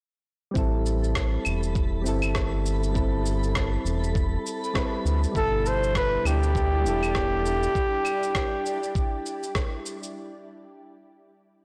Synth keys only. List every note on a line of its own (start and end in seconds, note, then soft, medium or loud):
0.51 2.00 G3 medium
0.51 2.01 C4 medium
0.56 2.02 E4 medium
0.56 2.03 A4 medium
2.02 2.90 G3 medium
2.02 2.91 C4 medium
2.06 2.93 E4 medium
2.06 2.94 A4 medium
2.92 4.70 G3 medium
2.92 4.71 C4 medium
2.96 4.73 E4 medium
2.96 4.74 A4 medium
4.73 5.30 G3 medium
4.73 5.32 C4 medium
4.73 5.32 E4 medium
4.73 5.33 B4 medium
5.32 6.81 B2 medium
5.32 6.80 G3 medium
5.36 6.83 E4 medium
5.36 6.84 A4 medium
6.81 7.70 G3 medium
6.81 7.71 B3 medium
6.86 7.73 E4 medium
6.86 7.74 A4 medium